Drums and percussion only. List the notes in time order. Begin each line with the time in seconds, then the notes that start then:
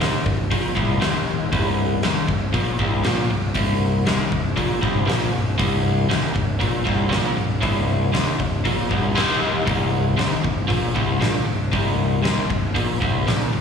0.01 snare, open hi-hat
0.26 kick
0.51 kick, open hi-hat
0.77 kick
1.01 snare, open hi-hat
1.53 kick, open hi-hat
2.03 snare, open hi-hat
2.29 kick
2.54 kick, open hi-hat
2.79 kick
3.04 snare, open hi-hat
3.54 kick, open hi-hat
4.06 snare, open hi-hat
4.32 kick
4.57 kick, open hi-hat
4.83 kick
5.09 snare, open hi-hat
5.59 kick, open hi-hat
6.11 snare, open hi-hat
6.36 kick
6.61 kick, open hi-hat
6.87 kick
7.12 snare, open hi-hat
7.62 kick, open hi-hat
8.14 snare, open hi-hat
8.40 kick
8.65 kick, open hi-hat
8.91 kick
9.17 snare, open hi-hat
9.67 kick, open hi-hat
10.19 snare, open hi-hat
10.44 kick
10.70 kick, open hi-hat
10.96 kick
11.22 snare, open hi-hat
11.73 kick, open hi-hat
12.25 snare, open hi-hat
12.50 kick
12.76 kick, open hi-hat
13.02 kick
13.28 snare, open hi-hat